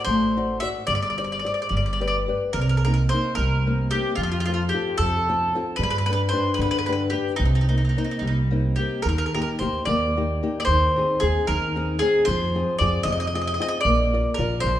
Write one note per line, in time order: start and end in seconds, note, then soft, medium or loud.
0.00 0.26 F#4 soft
0.00 0.25 C5 soft
0.00 0.26 D5 soft
0.05 0.60 A1 medium
0.05 0.61 A3 medium
0.05 0.57 C5 medium
0.37 0.61 F#4 soft
0.37 0.61 C5 soft
0.37 0.61 D5 soft
0.60 0.83 F#4 medium
0.60 0.83 C5 soft
0.60 0.83 D5 soft
0.60 0.67 E5 medium
0.87 1.42 G1 medium
0.87 1.43 G3 medium
0.87 0.94 D5 medium
0.95 1.01 D5 medium
1.02 1.09 D5 medium
1.10 1.17 D5 soft
1.18 1.43 G4 soft
1.18 1.43 C5 soft
1.18 1.23 D5 medium
1.18 1.44 D5 soft
1.24 1.31 D5 soft
1.32 1.38 D5 medium
1.39 1.45 D5 soft
1.44 1.65 G4 soft
1.44 1.66 C5 soft
1.44 1.66 D5 soft
1.44 1.53 D5 medium
1.54 1.61 D5 soft
1.62 1.68 D5 soft
1.69 2.25 G1 medium
1.69 2.26 G3 medium
1.69 1.76 D5 soft
1.77 1.85 D5 soft
1.86 1.92 D5 soft
1.93 2.00 D5 medium
2.00 2.27 G4 soft
2.00 2.27 B4 soft
2.00 2.06 D5 soft
2.00 2.27 D5 soft
2.08 2.16 D5 medium
2.28 2.50 G4 soft
2.28 2.50 B4 soft
2.28 2.50 D5 soft
2.53 3.08 C2 medium
2.53 3.10 C3 medium
2.53 2.60 A#4 medium
2.61 2.68 A#4 soft
2.69 2.76 A#4 medium
2.77 2.83 A#4 soft
2.85 3.12 A#3 soft
2.85 3.12 C4 soft
2.85 3.13 D#4 soft
2.85 2.92 A#4 medium
2.94 3.01 A#4 medium
3.09 3.56 A#3 soft
3.09 3.35 C5 medium
3.13 3.57 C4 soft
3.13 3.57 D#4 soft
3.35 3.90 C2 medium
3.35 3.87 A#4 medium
3.39 3.92 G3 medium
3.67 3.93 A#3 soft
3.67 3.94 C4 soft
3.67 3.94 D#4 soft
3.91 4.14 A#3 soft
3.91 4.15 G4 medium
3.95 4.15 C4 soft
3.95 4.15 D#4 soft
4.15 4.70 F2 medium
4.15 4.22 F4 medium
4.20 4.72 F3 medium
4.20 4.30 F4 medium
4.32 4.39 F4 medium
4.40 4.44 F4 medium
4.46 4.73 C4 soft
4.46 4.53 F4 medium
4.46 4.73 F4 soft
4.46 4.73 A4 soft
4.54 4.63 F4 medium
4.69 4.95 G4 medium
4.74 5.17 C4 soft
4.74 5.17 F4 soft
4.74 5.17 A4 medium
4.98 5.51 F2 medium
4.98 5.52 C3 medium
4.98 5.55 A4 medium
5.29 5.54 C4 soft
5.29 5.55 F4 soft
5.29 5.55 A4 medium
5.55 5.75 C4 soft
5.55 5.75 F4 soft
5.55 5.76 A4 medium
5.76 6.31 G2 medium
5.76 6.32 G3 medium
5.76 5.82 B4 medium
5.83 5.89 B4 medium
5.90 5.97 B4 medium
5.98 6.05 B4 medium
6.06 6.32 D4 soft
6.06 6.32 G4 soft
6.06 6.12 B4 medium
6.10 6.32 B4 soft
6.10 6.21 B4 medium
6.29 6.54 C5 medium
6.33 6.77 D4 soft
6.33 6.77 G4 soft
6.33 6.77 B4 soft
6.54 6.60 B4 medium
6.59 7.12 G2 medium
6.59 7.13 D3 medium
6.59 6.70 B4 medium
6.71 6.77 B4 medium
6.79 6.85 B4 medium
6.86 7.12 D4 soft
6.86 7.12 G4 soft
6.86 6.91 B4 medium
6.86 7.12 B4 soft
6.93 7.02 B4 medium
7.10 7.35 D4 soft
7.10 7.36 G4 medium
7.10 7.34 G4 soft
7.10 7.35 B4 soft
7.36 7.93 C2 medium
7.36 7.44 D#4 medium
7.41 7.95 C3 medium
7.45 7.54 D#4 soft
7.55 7.60 D#4 soft
7.61 7.68 D#4 soft
7.69 7.96 A#3 soft
7.69 7.96 C4 soft
7.69 7.76 D#4 soft
7.69 7.97 D#4 soft
7.78 7.83 D#4 soft
7.85 7.88 D#4 soft
7.89 7.97 D#4 soft
7.97 8.41 A#3 soft
7.97 8.41 C4 soft
7.97 8.42 D#4 soft
7.97 8.03 D#4 soft
8.04 8.10 D#4 soft
8.11 8.18 D#4 soft
8.19 8.76 C2 medium
8.19 8.77 G3 soft
8.19 8.26 D#4 soft
8.27 8.36 D#4 soft
8.51 8.77 A#3 soft
8.51 8.77 C4 soft
8.51 8.77 D#4 soft
8.76 8.99 A#3 soft
8.76 9.00 C4 soft
8.76 9.00 D#4 soft
8.76 9.02 G4 medium
9.02 9.41 D#2 medium
9.02 9.59 D#3 medium
9.02 9.07 A#4 medium
9.09 9.17 A#4 medium
9.18 9.25 A#4 medium
9.26 9.33 A#4 soft
9.34 9.60 A#3 soft
9.34 9.61 D#4 soft
9.34 9.61 G4 soft
9.34 9.40 A#4 medium
9.42 9.49 A#4 medium
9.59 9.78 D#2 medium
9.59 9.88 A#3 soft
9.59 10.05 D#4 soft
9.59 10.05 G4 soft
9.59 9.84 C5 medium
9.85 10.39 D#2 medium
9.85 10.16 A#3 medium
9.85 10.59 D5 medium
10.17 10.42 A#3 soft
10.17 10.42 D#4 soft
10.17 10.42 G4 soft
10.43 10.63 A#3 soft
10.43 10.63 D#4 soft
10.43 10.63 G4 medium
10.60 10.64 D5 medium
10.65 11.02 D#2 medium
10.65 11.22 C5 medium
10.69 11.21 D#3 medium
10.96 11.22 C4 soft
10.96 11.22 D#4 soft
10.96 11.22 G#4 soft
11.20 11.39 D#2 medium
11.20 11.65 C4 soft
11.20 11.65 D#4 soft
11.20 11.45 G#4 medium
11.20 11.65 G#4 medium
11.47 12.00 D#2 medium
11.47 11.99 D#3 medium
11.47 11.97 A#4 medium
11.76 12.01 C4 soft
11.76 12.01 D#4 medium
11.76 12.01 G#4 medium
11.99 12.22 C4 soft
11.99 12.22 D#4 soft
11.99 12.24 G#4 medium
11.99 12.22 G#4 soft
12.25 12.62 F2 medium
12.25 12.76 C5 loud
12.29 12.80 F3 medium
12.55 12.80 C4 soft
12.55 12.80 F4 soft
12.55 12.81 G#4 soft
12.79 12.97 F2 medium
12.79 13.24 C4 soft
12.79 13.23 F4 soft
12.79 13.24 G#4 medium
12.79 13.03 D5 medium
13.03 13.57 F2 medium
13.03 13.58 C3 medium
13.03 13.11 D#5 medium
13.12 13.19 D#5 medium
13.20 13.26 D#5 medium
13.27 13.34 D#5 medium
13.34 13.59 C4 soft
13.34 13.59 F4 soft
13.34 13.59 G#4 medium
13.34 13.40 D#5 medium
13.41 13.46 D#5 soft
13.47 13.53 D#5 medium
13.54 13.60 D#5 medium
13.60 13.80 C4 medium
13.60 13.80 F4 soft
13.60 13.80 G#4 medium
13.60 13.67 D#5 medium
13.68 13.77 D#5 medium
13.81 14.34 D5 medium
13.85 14.20 A#1 medium
13.85 14.38 A#3 medium
14.13 14.38 F4 soft
14.13 14.39 A#4 soft
14.13 14.39 D5 medium
14.34 14.60 A#4 medium
14.38 14.56 A#1 medium
14.38 14.80 F4 medium
14.38 14.80 A#4 soft
14.38 14.80 D5 soft
14.60 14.80 A#1 medium
14.60 14.80 C5 medium
14.66 14.80 F3 medium